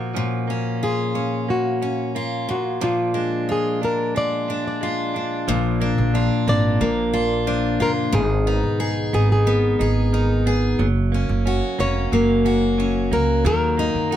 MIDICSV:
0, 0, Header, 1, 5, 480
1, 0, Start_track
1, 0, Tempo, 665188
1, 108, Time_signature, 4, 2, 24, 8
1, 10221, End_track
2, 0, Start_track
2, 0, Title_t, "Nylon-string guitar"
2, 0, Program_c, 0, 24
2, 604, Note_on_c, 0, 68, 87
2, 1081, Note_off_c, 0, 68, 0
2, 1084, Note_on_c, 0, 66, 82
2, 1529, Note_off_c, 0, 66, 0
2, 1809, Note_on_c, 0, 66, 67
2, 2047, Note_on_c, 0, 65, 79
2, 2048, Note_off_c, 0, 66, 0
2, 2534, Note_off_c, 0, 65, 0
2, 2538, Note_on_c, 0, 68, 71
2, 2772, Note_off_c, 0, 68, 0
2, 2775, Note_on_c, 0, 70, 85
2, 2988, Note_off_c, 0, 70, 0
2, 3012, Note_on_c, 0, 74, 93
2, 3365, Note_off_c, 0, 74, 0
2, 3373, Note_on_c, 0, 74, 74
2, 3699, Note_off_c, 0, 74, 0
2, 4685, Note_on_c, 0, 74, 105
2, 5610, Note_off_c, 0, 74, 0
2, 5643, Note_on_c, 0, 70, 87
2, 5707, Note_off_c, 0, 70, 0
2, 5879, Note_on_c, 0, 68, 98
2, 6591, Note_off_c, 0, 68, 0
2, 6600, Note_on_c, 0, 68, 81
2, 6719, Note_off_c, 0, 68, 0
2, 6726, Note_on_c, 0, 68, 76
2, 7529, Note_off_c, 0, 68, 0
2, 8518, Note_on_c, 0, 73, 94
2, 9474, Note_off_c, 0, 73, 0
2, 9477, Note_on_c, 0, 70, 80
2, 9712, Note_off_c, 0, 70, 0
2, 9721, Note_on_c, 0, 70, 92
2, 10221, Note_off_c, 0, 70, 0
2, 10221, End_track
3, 0, Start_track
3, 0, Title_t, "Steel-string acoustic guitar"
3, 0, Program_c, 1, 25
3, 0, Note_on_c, 1, 46, 73
3, 0, Note_on_c, 1, 66, 59
3, 110, Note_off_c, 1, 46, 0
3, 118, Note_on_c, 1, 46, 76
3, 361, Note_on_c, 1, 61, 57
3, 594, Note_off_c, 1, 66, 0
3, 597, Note_on_c, 1, 65, 60
3, 822, Note_off_c, 1, 61, 0
3, 831, Note_on_c, 1, 61, 50
3, 1308, Note_off_c, 1, 61, 0
3, 1316, Note_on_c, 1, 61, 52
3, 1555, Note_off_c, 1, 65, 0
3, 1558, Note_on_c, 1, 65, 63
3, 1785, Note_off_c, 1, 46, 0
3, 1794, Note_on_c, 1, 46, 65
3, 1843, Note_off_c, 1, 61, 0
3, 2021, Note_off_c, 1, 46, 0
3, 2029, Note_on_c, 1, 46, 73
3, 2267, Note_on_c, 1, 62, 54
3, 2514, Note_off_c, 1, 65, 0
3, 2517, Note_on_c, 1, 65, 56
3, 2760, Note_off_c, 1, 62, 0
3, 2763, Note_on_c, 1, 62, 49
3, 2999, Note_off_c, 1, 65, 0
3, 3001, Note_on_c, 1, 65, 56
3, 3243, Note_off_c, 1, 62, 0
3, 3246, Note_on_c, 1, 62, 55
3, 3481, Note_off_c, 1, 65, 0
3, 3484, Note_on_c, 1, 65, 60
3, 3721, Note_off_c, 1, 62, 0
3, 3724, Note_on_c, 1, 62, 50
3, 3949, Note_off_c, 1, 46, 0
3, 3958, Note_on_c, 1, 46, 90
3, 4193, Note_off_c, 1, 62, 0
3, 4195, Note_on_c, 1, 62, 64
3, 4434, Note_off_c, 1, 65, 0
3, 4437, Note_on_c, 1, 65, 64
3, 4666, Note_off_c, 1, 62, 0
3, 4675, Note_on_c, 1, 62, 50
3, 4913, Note_on_c, 1, 58, 62
3, 5140, Note_off_c, 1, 65, 0
3, 5148, Note_on_c, 1, 65, 65
3, 5383, Note_off_c, 1, 62, 0
3, 5392, Note_on_c, 1, 62, 62
3, 5620, Note_off_c, 1, 65, 0
3, 5629, Note_on_c, 1, 65, 64
3, 5863, Note_on_c, 1, 44, 88
3, 5875, Note_off_c, 1, 46, 0
3, 5919, Note_off_c, 1, 65, 0
3, 5920, Note_off_c, 1, 58, 0
3, 5920, Note_off_c, 1, 62, 0
3, 6112, Note_on_c, 1, 63, 65
3, 6349, Note_on_c, 1, 68, 73
3, 6587, Note_off_c, 1, 63, 0
3, 6596, Note_on_c, 1, 63, 53
3, 6833, Note_on_c, 1, 59, 61
3, 7070, Note_off_c, 1, 68, 0
3, 7077, Note_on_c, 1, 68, 68
3, 7307, Note_off_c, 1, 63, 0
3, 7315, Note_on_c, 1, 63, 62
3, 7545, Note_off_c, 1, 68, 0
3, 7553, Note_on_c, 1, 68, 64
3, 7785, Note_off_c, 1, 44, 0
3, 7838, Note_off_c, 1, 59, 0
3, 7839, Note_off_c, 1, 68, 0
3, 7840, Note_off_c, 1, 63, 0
3, 8041, Note_on_c, 1, 61, 63
3, 8276, Note_on_c, 1, 66, 69
3, 8505, Note_off_c, 1, 61, 0
3, 8513, Note_on_c, 1, 61, 57
3, 8752, Note_on_c, 1, 58, 65
3, 8986, Note_off_c, 1, 66, 0
3, 8989, Note_on_c, 1, 66, 72
3, 9226, Note_off_c, 1, 61, 0
3, 9235, Note_on_c, 1, 61, 63
3, 9469, Note_off_c, 1, 66, 0
3, 9472, Note_on_c, 1, 66, 71
3, 9713, Note_on_c, 1, 51, 84
3, 9758, Note_off_c, 1, 61, 0
3, 9951, Note_on_c, 1, 63, 64
3, 10188, Note_off_c, 1, 66, 0
3, 10191, Note_on_c, 1, 66, 67
3, 10221, Note_off_c, 1, 51, 0
3, 10221, Note_off_c, 1, 58, 0
3, 10221, Note_off_c, 1, 63, 0
3, 10221, Note_off_c, 1, 66, 0
3, 10221, End_track
4, 0, Start_track
4, 0, Title_t, "Clean electric guitar"
4, 0, Program_c, 2, 27
4, 0, Note_on_c, 2, 53, 68
4, 0, Note_on_c, 2, 58, 54
4, 100, Note_off_c, 2, 53, 0
4, 103, Note_on_c, 2, 53, 74
4, 108, Note_on_c, 2, 61, 56
4, 339, Note_off_c, 2, 58, 0
4, 342, Note_on_c, 2, 58, 52
4, 821, Note_off_c, 2, 61, 0
4, 829, Note_on_c, 2, 61, 57
4, 1069, Note_off_c, 2, 58, 0
4, 1072, Note_on_c, 2, 58, 55
4, 1303, Note_off_c, 2, 61, 0
4, 1312, Note_on_c, 2, 61, 60
4, 1549, Note_off_c, 2, 58, 0
4, 1552, Note_on_c, 2, 58, 56
4, 1840, Note_off_c, 2, 61, 0
4, 2028, Note_off_c, 2, 53, 0
4, 2031, Note_on_c, 2, 53, 74
4, 2034, Note_on_c, 2, 62, 62
4, 2268, Note_off_c, 2, 58, 0
4, 2271, Note_on_c, 2, 56, 54
4, 2507, Note_off_c, 2, 53, 0
4, 2510, Note_on_c, 2, 53, 47
4, 2752, Note_off_c, 2, 62, 0
4, 2755, Note_on_c, 2, 62, 57
4, 2984, Note_off_c, 2, 56, 0
4, 2993, Note_on_c, 2, 56, 54
4, 3231, Note_off_c, 2, 62, 0
4, 3234, Note_on_c, 2, 62, 52
4, 3462, Note_off_c, 2, 56, 0
4, 3470, Note_on_c, 2, 56, 58
4, 3707, Note_off_c, 2, 62, 0
4, 3710, Note_on_c, 2, 62, 58
4, 3949, Note_off_c, 2, 53, 0
4, 3952, Note_on_c, 2, 53, 81
4, 4000, Note_off_c, 2, 56, 0
4, 4190, Note_on_c, 2, 58, 64
4, 4427, Note_off_c, 2, 62, 0
4, 4430, Note_on_c, 2, 62, 68
4, 4663, Note_off_c, 2, 58, 0
4, 4671, Note_on_c, 2, 58, 61
4, 4905, Note_off_c, 2, 53, 0
4, 4913, Note_on_c, 2, 53, 59
4, 5142, Note_off_c, 2, 62, 0
4, 5150, Note_on_c, 2, 62, 61
4, 5383, Note_off_c, 2, 53, 0
4, 5391, Note_on_c, 2, 53, 67
4, 5625, Note_off_c, 2, 58, 0
4, 5634, Note_on_c, 2, 58, 62
4, 5866, Note_off_c, 2, 53, 0
4, 5869, Note_on_c, 2, 51, 80
4, 5919, Note_off_c, 2, 62, 0
4, 5921, Note_off_c, 2, 58, 0
4, 6110, Note_on_c, 2, 59, 61
4, 6347, Note_on_c, 2, 63, 59
4, 6580, Note_off_c, 2, 59, 0
4, 6589, Note_on_c, 2, 59, 64
4, 6821, Note_off_c, 2, 51, 0
4, 6829, Note_on_c, 2, 51, 61
4, 7058, Note_off_c, 2, 63, 0
4, 7066, Note_on_c, 2, 63, 61
4, 7301, Note_off_c, 2, 51, 0
4, 7310, Note_on_c, 2, 51, 70
4, 7541, Note_off_c, 2, 59, 0
4, 7549, Note_on_c, 2, 59, 62
4, 7783, Note_off_c, 2, 51, 0
4, 7786, Note_on_c, 2, 54, 85
4, 7836, Note_off_c, 2, 63, 0
4, 7837, Note_off_c, 2, 59, 0
4, 8023, Note_on_c, 2, 58, 57
4, 8267, Note_on_c, 2, 61, 62
4, 8501, Note_off_c, 2, 58, 0
4, 8504, Note_on_c, 2, 58, 62
4, 8743, Note_off_c, 2, 54, 0
4, 8746, Note_on_c, 2, 54, 64
4, 8976, Note_off_c, 2, 61, 0
4, 8985, Note_on_c, 2, 61, 65
4, 9220, Note_off_c, 2, 54, 0
4, 9222, Note_on_c, 2, 54, 68
4, 9461, Note_off_c, 2, 58, 0
4, 9464, Note_on_c, 2, 58, 67
4, 9703, Note_off_c, 2, 54, 0
4, 9705, Note_on_c, 2, 54, 80
4, 9753, Note_off_c, 2, 61, 0
4, 9936, Note_off_c, 2, 58, 0
4, 9939, Note_on_c, 2, 58, 59
4, 10181, Note_on_c, 2, 63, 62
4, 10221, Note_off_c, 2, 54, 0
4, 10221, Note_off_c, 2, 58, 0
4, 10221, Note_off_c, 2, 63, 0
4, 10221, End_track
5, 0, Start_track
5, 0, Title_t, "Upright bass"
5, 0, Program_c, 3, 32
5, 3954, Note_on_c, 3, 34, 103
5, 4285, Note_off_c, 3, 34, 0
5, 4316, Note_on_c, 3, 34, 96
5, 4536, Note_off_c, 3, 34, 0
5, 4671, Note_on_c, 3, 32, 98
5, 4893, Note_off_c, 3, 32, 0
5, 4912, Note_on_c, 3, 34, 104
5, 5603, Note_off_c, 3, 34, 0
5, 5632, Note_on_c, 3, 30, 78
5, 5853, Note_off_c, 3, 30, 0
5, 5867, Note_on_c, 3, 32, 110
5, 6201, Note_off_c, 3, 32, 0
5, 6228, Note_on_c, 3, 35, 83
5, 6561, Note_off_c, 3, 35, 0
5, 6591, Note_on_c, 3, 32, 99
5, 7042, Note_off_c, 3, 32, 0
5, 7073, Note_on_c, 3, 32, 96
5, 7762, Note_off_c, 3, 32, 0
5, 7788, Note_on_c, 3, 30, 104
5, 8119, Note_off_c, 3, 30, 0
5, 8149, Note_on_c, 3, 30, 96
5, 8369, Note_off_c, 3, 30, 0
5, 8507, Note_on_c, 3, 29, 90
5, 8728, Note_off_c, 3, 29, 0
5, 8747, Note_on_c, 3, 30, 90
5, 9438, Note_off_c, 3, 30, 0
5, 9465, Note_on_c, 3, 37, 83
5, 9686, Note_off_c, 3, 37, 0
5, 9703, Note_on_c, 3, 39, 115
5, 10035, Note_off_c, 3, 39, 0
5, 10064, Note_on_c, 3, 42, 80
5, 10221, Note_off_c, 3, 42, 0
5, 10221, End_track
0, 0, End_of_file